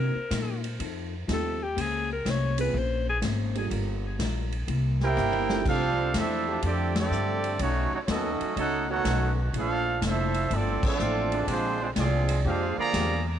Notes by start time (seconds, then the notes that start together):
Already playing: C3 F#3 A#3 C4 D4 D#4 F#4 A#4
0.15 muted upright bass stroke
0.31 A#2 C3 F#3 A#3 D#4, kick, snare, hi-hat pedal, ride
0.64 ride
0.79 F2 F3 C4 D#4 A4, kick, ride
1.28 D#2 F3 A3 C4 D#4 F4 G4 A4, kick, snare, hi-hat pedal, ride
1.33 A4
1.63 G4
1.76 C#2 A#3 C#4 G#4 C5, kick, ride
1.81 G#4
2.13 A#4
2.25 C2 A#3 C#4 G#4 C5, kick, snare, hi-hat pedal, ride
2.30 C#5
2.58 A#3 C4 C#4 F4 G#4 B4, ride
2.73 A#1 A#3 C#4 G#4 C5, kick
2.78 C5
3.09 G#4
3.22 G#1 A#3 C#4 G#4 C5, kick, snare, hi-hat pedal, ride
3.55 G3 A#3 D4 F4 A4, ride
3.70 G1 G3 D4 F4 A#4, kick, ride
4.19 A#1 G3 D4 F4 A#4, kick, snare, hi-hat pedal, ride
4.52 ride
4.67 C2 C3 G3 A#3 E4, kick, ride
5.00 A#3 E4 G4, snare
5.04 E4 A#4 C5 G5
5.16 G1 C3 G3 A#3 E4, hi-hat pedal, high tom
5.33 high tom
5.49 G3 C4 D4 F4 A4, snare
5.65 C2 F3 A3 C4 D4 F4 G4 A4 C5 F5, kick, crash
6.14 E2 F3 A3 C4 D4 E4 G4 A4 C5 E5, kick, snare, hi-hat pedal, ride
6.47 F3 A3 D4 G4
6.62 F2 D3 F3 A3 C4 D4 G4, kick, ride
6.66 A4 D5
6.95 D3 A3 C4 D4 G4 A4 D5, snare, ride
7.11 G2 F3 A3 D4 G4, hi-hat pedal
7.44 ride
7.59 B1 B2 F#3 A3 C#4 D#4 F#4 C#5, kick, ride
7.92 F#3 A3 C#4 D#4 F#4 C#5, muted upright bass stroke
8.06 D#2 B2 D#3 F#3 A3 C#4 D#4 F#4 A4 C#5 D#5, kick, snare, hi-hat pedal, ride
8.10 B3 A4
8.40 muted upright bass stroke, ride
8.56 C#2 B2 A3 C#4 D#4 F#4 A4 C#5 F#5, kick, ride
8.89 D#3 A3 B3 C#4 D#4 F#4 A4 C#5 F#5
9.05 B1 B2 A3 C#4 D#4, kick, snare, hi-hat pedal, ride
9.53 A#1 A#2 A3 D4 E4 F4, kick, ride
9.59 D4 A4 C5 F5
10.01 F1 A#2 F3 A3 D4 E4, kick, snare, hi-hat pedal, ride
10.07 D4 A4 C5 E5
10.34 ride
10.50 G1 A#2 F3 A3 D4 E4, kick, ride
10.55 C4 F4 A4 D5
10.83 F3 A3 C4 D4 A4, muted upright bass stroke, kick, crash
10.87 C4 F4 A4 D5
10.99 A1 A#2 A3 D4 E4, hi-hat pedal
11.32 D3 G#3 C4 D4, ride
11.47 A#1 A#2 F3 G#3 C4 D4 G4, kick, ride
11.51 D4 F4 C5
11.81 F3 G#3 C4 D4 F4 C5
11.96 C2 A#2 F3 G#3 C4 D4 F4 G4 G#4 D5, kick, snare, hi-hat pedal, ride
12.29 ride
12.44 F2 A#2 D3 G#3 C4 D4 F4 G4 G#4 C5 F5, kick
12.77 D3 F3 A#3 G#4 D5 F5 A#5, muted upright bass stroke
12.92 E2 A#2 D3 G#3 C4 D4 G4, kick, snare, hi-hat pedal, ride